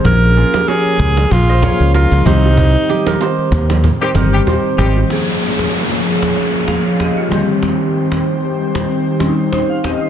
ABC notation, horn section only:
X:1
M:4/4
L:1/16
Q:"Swing 16ths" 1/4=95
K:Bbdor
V:1 name="Horn section"
z16 | z8 z [E,G,CG] z [E,G,CG] z2 [E,G,CG]2 | z16 | z16 |]